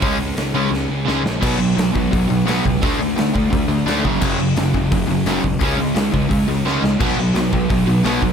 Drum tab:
CC |--------|x-------|--------|x-------|
HH |o-o-----|--o-o-o-|o-o-o-o-|--o-o-o-|
SD |--o-o-oo|--o---o-|--o---o-|--o---o-|
BD |o-------|o--oo--o|o--oo--o|o--oo--o|

CC |--------|x-------|
HH |o-o-o---|--o-o-o-|
SD |--o---oo|--o---o-|
BD |o--oo---|o--oo--o|